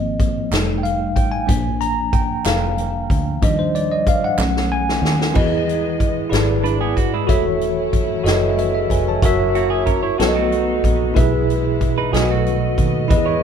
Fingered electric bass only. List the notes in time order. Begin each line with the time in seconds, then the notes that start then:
Already playing: G#1
0.51 F1
1.17 A1
1.49 A#1
2.45 F1
3.10 D2
3.42 D#2
4.38 B1
5.02 D#2
5.36 E2
6.32 G#1
6.97 D#1
7.29 E1
8.24 F#1
8.90 F1
9.22 F#1
10.19 B1
10.83 A#1
11.16 B1
12.13 B1
12.78 D#2
13.10 E2